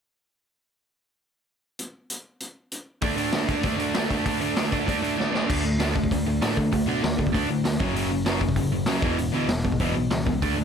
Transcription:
1.79 closed hi-hat
2.10 closed hi-hat
2.40 closed hi-hat
2.72 closed hi-hat
3.02 overdriven electric guitar D3 A3 D4, kick, open hi-hat
3.17 overdriven electric guitar D3 A3 D4, open hi-hat
3.33 overdriven electric guitar D3 A3 D4, snare, open hi-hat
3.48 overdriven electric guitar D3 A3 D4, kick, open hi-hat
3.63 overdriven electric guitar D3 A3 D4, kick, open hi-hat
3.80 overdriven electric guitar D3 A3 D4, open hi-hat
3.95 overdriven electric guitar D3 A3 D4, snare, open hi-hat
4.11 overdriven electric guitar D3 A3 D4, kick, open hi-hat
4.26 overdriven electric guitar D3 A3 D4, kick, open hi-hat
4.41 overdriven electric guitar D3 A3 D4, open hi-hat
4.57 overdriven electric guitar D3 A3 D4, snare, open hi-hat
4.71 overdriven electric guitar D3 A3 D4, kick, open hi-hat
4.86 overdriven electric guitar D3 A3 D4, kick, open hi-hat
5.02 overdriven electric guitar D3 A3 D4, open hi-hat
5.17 overdriven electric guitar D3 A3 D4, snare
5.34 overdriven electric guitar D3 A3 D4, snare
5.49 analog synth bass D2, overdriven electric guitar D3 A3 D4, kick, crash
5.64 analog synth bass D2, overdriven electric guitar D3 A3
5.79 analog synth bass D2, overdriven electric guitar D3 A3 D4, snare, open hi-hat
5.95 overdriven electric guitar D3 A3, kick
6.04 kick
6.11 analog synth bass D2, overdriven electric guitar D3 A3, kick, open hi-hat
6.26 analog synth bass D2, overdriven electric guitar D3 A3
6.42 analog synth bass A2, overdriven electric guitar D3 A3 D4, snare, open hi-hat
6.57 analog synth bass D3, overdriven electric guitar D3 A3, kick
6.72 analog synth bass D2, overdriven electric guitar D3 A3, kick, open hi-hat
6.86 analog synth bass B2, overdriven electric guitar D3 A3 D4
7.03 analog synth bass D2, overdriven electric guitar D3 A3, snare, open hi-hat
7.19 overdriven electric guitar D3 A3, kick
7.27 kick
7.34 analog synth bass D2, overdriven electric guitar D3 A3 D4, kick, open hi-hat
7.49 analog synth bass A2, overdriven electric guitar D3 A3
7.65 analog synth bass D2, overdriven electric guitar D3 A3, snare, open hi-hat
7.79 analog synth bass F#1, overdriven electric guitar F#2 C#3 F#3, kick
7.94 analog synth bass F#1, overdriven electric guitar F#2 C#3 F#3, open hi-hat
8.10 analog synth bass F#1, overdriven electric guitar F#2 C#3
8.26 analog synth bass F#1, overdriven electric guitar F#2 C#3 F#3, snare, open hi-hat
8.40 overdriven electric guitar F#2 C#3, kick
8.49 kick
8.56 analog synth bass F#1, overdriven electric guitar F#2 C#3, kick, open hi-hat
8.71 analog synth bass F#1, overdriven electric guitar F#2 C#3
8.86 analog synth bass C#2, overdriven electric guitar F#2 C#3 F#3, snare, open hi-hat
9.02 analog synth bass E1, overdriven electric guitar E2 B2 E3, kick
9.16 analog synth bass E1, overdriven electric guitar E2 B2, open hi-hat
9.32 analog synth bass D2, overdriven electric guitar E2 B2 E3
9.48 analog synth bass E1, overdriven electric guitar E2 B2, snare, open hi-hat
9.65 overdriven electric guitar E2 B2, kick
9.72 kick
9.80 analog synth bass E1, overdriven electric guitar E2 B2 E3, kick, open hi-hat
9.94 analog synth bass B1, overdriven electric guitar E2 B2
10.11 analog synth bass C#2, overdriven electric guitar E2 B2, snare, open hi-hat
10.26 overdriven electric guitar E2 B2, kick
10.42 analog synth bass D2, overdriven electric guitar D3 A3 D4, kick, open hi-hat
10.57 analog synth bass D2, overdriven electric guitar D3 A3

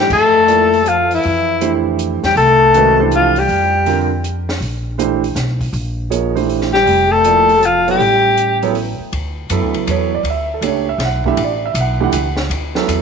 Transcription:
0.00 alto saxophone G4
0.10 upright bass F2, trombone A3, alto saxophone A4, kick, crash
0.48 grand piano F3 A#3 E4 A4 D5, closed hi-hat
0.73 open hi-hat
0.86 trombone F3, alto saxophone F4, closed hi-hat
1.11 trombone E3, alto saxophone E4, open hi-hat
1.23 upright bass F2, open hi-hat
1.61 grand piano E3 A3 D4 G4 C5, closed hi-hat
1.99 closed hi-hat
2.23 upright bass E2, trombone G3, alto saxophone G4, snare, open hi-hat
2.36 upright bass C2, trombone A3, alto saxophone A4, open hi-hat
2.74 grand piano D#3 G#3 C#4 F#4 B4, closed hi-hat
2.99 grand piano E3 A3 D4 G4 C5
3.12 trombone F3, alto saxophone F4, closed hi-hat
3.36 trombone G3, alto saxophone G4, open hi-hat
3.48 upright bass F2, open hi-hat
3.86 grand piano D3 G3 C4 F4 A#4, open hi-hat
4.24 closed hi-hat
4.49 snare, open hi-hat
4.60 upright bass A#1, open hi-hat
4.98 grand piano E3 A3 D4 G4 C5, closed hi-hat
5.24 open hi-hat
5.35 upright bass B1, snare, closed hi-hat
5.61 kick, open hi-hat
5.73 upright bass A#1, open hi-hat
6.10 grand piano F3 A#3 D#4 G#4 C#5, closed hi-hat
6.35 grand piano E3 A3 D4 G4 C5, open hi-hat
6.49 open hi-hat
6.61 snare
6.73 trombone G3, alto saxophone G4, snare
6.86 upright bass F1, open hi-hat
7.11 trombone A3, alto saxophone A4
7.24 grand piano F3 A#3 E4 A4 D5, closed hi-hat
7.49 open hi-hat
7.62 trombone F3, alto saxophone F4, closed hi-hat
7.88 grand piano F#3 B3 E4 A4 C#5, trombone G3, alto saxophone G4, open hi-hat
7.99 upright bass A1, open hi-hat
8.37 closed hi-hat
8.63 grand piano F#3 B3 E4 A4 C#5, open hi-hat
8.75 open hi-hat
9.00 muted upright bass stroke
9.12 upright bass D2, ride
9.50 upright bass F#2, grand piano F#3 B3 E4 A4, hi-hat pedal, ride
9.62 upright bass D2
9.74 upright bass C#2, ride
9.87 upright bass E2, grand piano F#3 B3 E4 A4 C#5, hi-hat pedal, ride
10.15 grand piano D5
10.23 upright bass D2, ride
10.30 grand piano E5
10.54 grand piano A4
10.61 upright bass C#2, grand piano A3 D4 G4 C#5, hi-hat pedal, ride
10.68 grand piano C#5
10.89 grand piano E5
10.98 upright bass B1, snare, ride
11.05 grand piano F#5
11.24 grand piano E3 A3 D4 G4 E5, kick
11.37 upright bass A1, ride
11.44 grand piano D5
11.66 grand piano E5
11.74 upright bass B1, hi-hat pedal, ride
11.80 grand piano F#5
12.00 grand piano E3 A3 D4 G4 F#5
12.12 upright bass C#2, hi-hat pedal, ride
12.37 snare
12.50 upright bass D2, ride
12.75 grand piano F#3 B3 E4 A4, snare
12.88 upright bass E2, hi-hat pedal, ride

